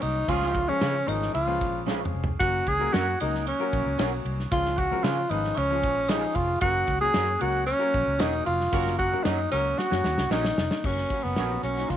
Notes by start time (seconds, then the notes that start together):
Already playing: F#3 A#3 C#4 F#4 A#4
0.02 C2 D#4 D#6, open hi-hat, ride
0.28 C#2 F3 G#3 C#4 F4 G#4 F6, kick, hi-hat pedal, ride
0.42 snare
0.55 kick, ride
0.68 F3 G#3 C#4 F4 G#4 C#6
0.81 C#3 C#4 F4 G#4 C#5, snare, ride
1.06 G#1 F3 G#3 C#4 D#4 F4 A#4 D#6, ride
1.22 snare
1.34 C#2 F4 F6, ride
1.47 F3 G#3 C#4 F4 B4
1.61 A#1, kick, ride
1.86 F3 G#3 C#4 E4 F4 G#4 C#5, snare
1.94 F4
2.05 mid tom
2.14 F1
2.24 floor tom
2.39 F#1 F#3 A#3 C#4 F#4 A#4 F#6, kick, ride
2.67 C#2 G#4 G#6, kick, ride
2.79 F#3 A#3 C#4 F#4 A#4
2.93 F#2 C#4 F#4 A#4 C#5 F#6, snare, ride
3.20 C#2 F#3 A#3 C#4 D#4 F#4 A#4 D#6, ride
3.35 snare
3.47 C#4 C#6, ride
3.59 F#3 A#3 C#4 F#4 A#4
3.73 A#1, kick, ride
3.86 C#2
3.98 B1 F#3 A#3 C#4 F#4 A#4 C#5, snare, ride
4.25 C2, ride
4.40 snare
4.51 C#2 F3 G#3 C#4 F4 G#4 F6, kick, ride
4.66 snare
4.76 F#4 F#6, kick, ride
4.91 F3 G#3 C#4 F4 A#4
5.03 C#3 C#4 F4 G#4 C#5 F6, snare, ride
5.29 G#1 F3 G#3 C#4 D#4 F4 B4 D#6, ride
5.44 snare
5.55 C#2 C#4 C#6, ride
5.70 F3 G#3 C#4 F4 G#4
5.83 A#1, kick, ride
6.08 F3 G#3 C#4 D#4 F4 G4 G#4 C#5 D#6, snare, ride
6.17 G#4
6.35 F1 F4 F6, kick, ride
6.61 F#1 F#3 A#3 C#4 F#4 A#4 F#6, kick, ride
6.87 C#2, kick, ride
7.01 F#3 A#3 C#4 F#4 G#4 G#6
7.14 F#2 C#4 F#4 A#4 C#5, snare, ride
7.39 C#2 F#3 A#3 C#4 F#4 A#4 F#6, ride
7.66 C#4 C#6, ride
7.79 F#3 A#3 C#4 F#4 A#4
7.94 A#1, kick, ride
8.07 C#2
8.18 E1 F#3 A#3 C#4 D#4 F#4 A#4 C#5 D#6, snare, ride
8.45 F1 F4 F6, ride
8.60 snare
8.71 F#1 F#3 A#3 C#4 F#4 A#4, kick, ride
8.87 snare
8.98 F#4 F#6, kick, ride
9.12 F#3 A#3 C#4 F#4 A#4
9.24 F#2 C#4 D#4 F#4 A#4 C#5 D#6, snare, ride
9.51 C#2 F#3 A#3 C#4 F#4 A#4 C#6, ride
9.79 F#4 F#6, snare
9.90 F#2 F#3 A#3 C#4 F#4 C#5, snare
10.04 D#2, snare
10.18 C#2, snare
10.30 A#1 F#3 A#3 C#4 D#4 F#4 A#4 C#5, snare
10.45 snare
10.58 F1, snare
10.71 snare
10.83 F#1 F#3 A#3 C#4 F#4 A#4, kick, crash
10.97 snare
11.09 F#3 A#3 C#4 F#4, kick, closed hi-hat
11.24 F#1 B3
11.36 A#1 C#4 F#4 A#4 C#5, snare, closed hi-hat
11.50 F#3 A#3 C#4 F#4
11.63 B1 C#4, closed hi-hat
11.76 F#3 A#3 C#4 D#4, snare, closed hi-hat
11.90 C#2 F4, kick, closed hi-hat